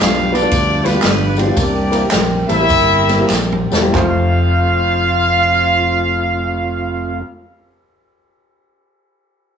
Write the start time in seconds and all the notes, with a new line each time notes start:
Already playing: G2 F3 G3 B3 D4 G4 B4
0.00 B1 F4 F5, snare, clap, ride, tambourine
0.32 G3 B3 D4 F4 B4 D5, ride, tambourine
0.42 G3 B3 D4 F4 A4
0.51 D2, kick, ride, tambourine
0.84 G3 B3 D4 F4 B4, snare, ride, tambourine
0.94 G3 B3 D4 F4 D5
1.02 G1, snare, clap, ride, tambourine
1.36 G3 B3 C4 D4 F4 G4 C5, ride, tambourine
1.46 G3 B3 D4 F4 D5
1.56 C2 C3 E3 A#3 C4 D4 G4 A#4 D5, kick, ride, tambourine
1.91 G3 A#3 C4 E4 A#4, ride, tambourine
2.11 A#1, snare, clap, ride, tambourine
2.49 A1 G3 A#3 C4 E4 G4 A4 A#4 E5, ride, tambourine
2.60 G3 A#3 C4 E4 G4
2.69 G1, kick, ride, tambourine
3.09 G3 A#3 C4 E4 A#4, snare, ride, tambourine
3.20 G3 A#3 C4 E4 G4
3.30 A#1, snare, clap, tambourine
3.52 mid tom
3.72 E1 G3 A#3 C4 E4 A4, snare, tambourine
3.82 G3 A#3 C4 E4 G4
3.91 F1 F2 A3 C4 F4 F5, kick, clap, floor tom
3.96 C5